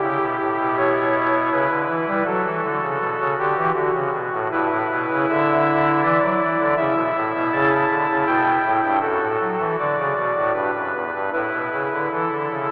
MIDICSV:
0, 0, Header, 1, 2, 480
1, 0, Start_track
1, 0, Key_signature, 2, "major"
1, 0, Tempo, 750000
1, 8, Time_signature, 3, 2, 24, 8
1, 5768, Tempo, 775194
1, 8061, End_track
2, 0, Start_track
2, 0, Title_t, "Pipe organ"
2, 0, Program_c, 0, 19
2, 6, Note_on_c, 0, 64, 41
2, 7, Note_on_c, 0, 49, 68
2, 8, Note_on_c, 0, 67, 87
2, 110, Note_off_c, 0, 49, 0
2, 130, Note_on_c, 0, 47, 66
2, 234, Note_off_c, 0, 47, 0
2, 248, Note_on_c, 0, 45, 64
2, 354, Note_off_c, 0, 45, 0
2, 373, Note_on_c, 0, 47, 66
2, 482, Note_off_c, 0, 67, 0
2, 494, Note_on_c, 0, 73, 110
2, 956, Note_off_c, 0, 47, 0
2, 959, Note_off_c, 0, 73, 0
2, 968, Note_on_c, 0, 49, 74
2, 972, Note_on_c, 0, 71, 101
2, 1072, Note_off_c, 0, 49, 0
2, 1083, Note_on_c, 0, 50, 72
2, 1189, Note_off_c, 0, 50, 0
2, 1204, Note_on_c, 0, 52, 64
2, 1309, Note_off_c, 0, 52, 0
2, 1322, Note_on_c, 0, 55, 71
2, 1424, Note_off_c, 0, 64, 0
2, 1427, Note_off_c, 0, 55, 0
2, 1435, Note_off_c, 0, 71, 0
2, 1439, Note_on_c, 0, 66, 47
2, 1439, Note_on_c, 0, 69, 107
2, 1443, Note_on_c, 0, 54, 76
2, 1548, Note_off_c, 0, 54, 0
2, 1562, Note_on_c, 0, 52, 70
2, 1666, Note_off_c, 0, 52, 0
2, 1681, Note_on_c, 0, 50, 70
2, 1785, Note_off_c, 0, 50, 0
2, 1799, Note_on_c, 0, 49, 74
2, 1903, Note_off_c, 0, 49, 0
2, 1922, Note_on_c, 0, 47, 71
2, 2024, Note_off_c, 0, 47, 0
2, 2041, Note_on_c, 0, 49, 76
2, 2134, Note_off_c, 0, 69, 0
2, 2142, Note_off_c, 0, 49, 0
2, 2166, Note_on_c, 0, 67, 101
2, 2167, Note_on_c, 0, 50, 73
2, 2265, Note_off_c, 0, 50, 0
2, 2276, Note_on_c, 0, 52, 73
2, 2365, Note_off_c, 0, 67, 0
2, 2379, Note_off_c, 0, 52, 0
2, 2379, Note_off_c, 0, 66, 0
2, 2392, Note_on_c, 0, 50, 80
2, 2392, Note_on_c, 0, 66, 112
2, 2497, Note_off_c, 0, 50, 0
2, 2517, Note_on_c, 0, 49, 73
2, 2622, Note_off_c, 0, 49, 0
2, 2641, Note_on_c, 0, 47, 77
2, 2747, Note_off_c, 0, 47, 0
2, 2762, Note_on_c, 0, 45, 72
2, 2868, Note_off_c, 0, 45, 0
2, 2870, Note_off_c, 0, 66, 0
2, 2887, Note_on_c, 0, 64, 51
2, 2888, Note_on_c, 0, 71, 111
2, 2890, Note_on_c, 0, 43, 78
2, 2994, Note_off_c, 0, 43, 0
2, 3008, Note_on_c, 0, 45, 80
2, 3115, Note_off_c, 0, 45, 0
2, 3132, Note_on_c, 0, 47, 67
2, 3238, Note_off_c, 0, 47, 0
2, 3257, Note_on_c, 0, 49, 85
2, 3362, Note_off_c, 0, 49, 0
2, 3367, Note_off_c, 0, 71, 0
2, 3383, Note_on_c, 0, 50, 82
2, 3383, Note_on_c, 0, 76, 121
2, 3848, Note_off_c, 0, 50, 0
2, 3848, Note_off_c, 0, 76, 0
2, 3859, Note_on_c, 0, 52, 76
2, 3860, Note_on_c, 0, 74, 122
2, 3961, Note_off_c, 0, 52, 0
2, 3976, Note_on_c, 0, 54, 81
2, 4078, Note_off_c, 0, 54, 0
2, 4101, Note_on_c, 0, 52, 67
2, 4201, Note_off_c, 0, 52, 0
2, 4219, Note_on_c, 0, 50, 65
2, 4310, Note_off_c, 0, 64, 0
2, 4319, Note_off_c, 0, 50, 0
2, 4321, Note_off_c, 0, 74, 0
2, 4329, Note_on_c, 0, 64, 47
2, 4330, Note_on_c, 0, 76, 123
2, 4333, Note_on_c, 0, 49, 86
2, 4436, Note_off_c, 0, 49, 0
2, 4448, Note_on_c, 0, 47, 80
2, 4555, Note_off_c, 0, 47, 0
2, 4577, Note_on_c, 0, 45, 70
2, 4681, Note_off_c, 0, 45, 0
2, 4696, Note_on_c, 0, 47, 80
2, 4801, Note_off_c, 0, 47, 0
2, 4804, Note_off_c, 0, 76, 0
2, 4816, Note_on_c, 0, 49, 83
2, 4817, Note_on_c, 0, 81, 124
2, 5021, Note_off_c, 0, 49, 0
2, 5054, Note_on_c, 0, 50, 80
2, 5156, Note_off_c, 0, 50, 0
2, 5174, Note_on_c, 0, 49, 58
2, 5275, Note_off_c, 0, 49, 0
2, 5278, Note_off_c, 0, 81, 0
2, 5292, Note_on_c, 0, 79, 122
2, 5293, Note_on_c, 0, 47, 82
2, 5494, Note_off_c, 0, 47, 0
2, 5530, Note_on_c, 0, 45, 65
2, 5631, Note_off_c, 0, 45, 0
2, 5649, Note_on_c, 0, 43, 63
2, 5739, Note_off_c, 0, 64, 0
2, 5750, Note_off_c, 0, 43, 0
2, 5753, Note_off_c, 0, 79, 0
2, 5766, Note_on_c, 0, 66, 46
2, 5769, Note_on_c, 0, 42, 69
2, 5769, Note_on_c, 0, 69, 109
2, 5869, Note_off_c, 0, 42, 0
2, 5888, Note_on_c, 0, 45, 75
2, 5989, Note_off_c, 0, 45, 0
2, 6008, Note_on_c, 0, 54, 58
2, 6109, Note_off_c, 0, 54, 0
2, 6129, Note_on_c, 0, 52, 62
2, 6229, Note_off_c, 0, 52, 0
2, 6231, Note_off_c, 0, 69, 0
2, 6245, Note_on_c, 0, 50, 74
2, 6247, Note_on_c, 0, 74, 106
2, 6347, Note_off_c, 0, 50, 0
2, 6361, Note_on_c, 0, 49, 72
2, 6463, Note_off_c, 0, 49, 0
2, 6476, Note_on_c, 0, 47, 58
2, 6580, Note_off_c, 0, 47, 0
2, 6594, Note_on_c, 0, 45, 59
2, 6694, Note_off_c, 0, 66, 0
2, 6698, Note_off_c, 0, 45, 0
2, 6706, Note_off_c, 0, 74, 0
2, 6709, Note_on_c, 0, 43, 63
2, 6711, Note_on_c, 0, 71, 93
2, 6815, Note_off_c, 0, 43, 0
2, 6839, Note_on_c, 0, 42, 67
2, 6941, Note_off_c, 0, 42, 0
2, 6957, Note_on_c, 0, 40, 52
2, 7061, Note_off_c, 0, 40, 0
2, 7076, Note_on_c, 0, 43, 53
2, 7181, Note_off_c, 0, 43, 0
2, 7183, Note_off_c, 0, 71, 0
2, 7198, Note_on_c, 0, 64, 38
2, 7200, Note_on_c, 0, 71, 93
2, 7201, Note_on_c, 0, 45, 56
2, 7305, Note_off_c, 0, 45, 0
2, 7322, Note_on_c, 0, 47, 58
2, 7426, Note_off_c, 0, 47, 0
2, 7442, Note_on_c, 0, 49, 50
2, 7547, Note_off_c, 0, 49, 0
2, 7564, Note_on_c, 0, 50, 55
2, 7668, Note_off_c, 0, 50, 0
2, 7672, Note_off_c, 0, 71, 0
2, 7688, Note_on_c, 0, 52, 58
2, 7690, Note_on_c, 0, 69, 66
2, 7790, Note_off_c, 0, 52, 0
2, 7811, Note_on_c, 0, 50, 59
2, 7912, Note_off_c, 0, 50, 0
2, 7926, Note_on_c, 0, 49, 51
2, 8029, Note_off_c, 0, 49, 0
2, 8061, Note_off_c, 0, 64, 0
2, 8061, Note_off_c, 0, 69, 0
2, 8061, End_track
0, 0, End_of_file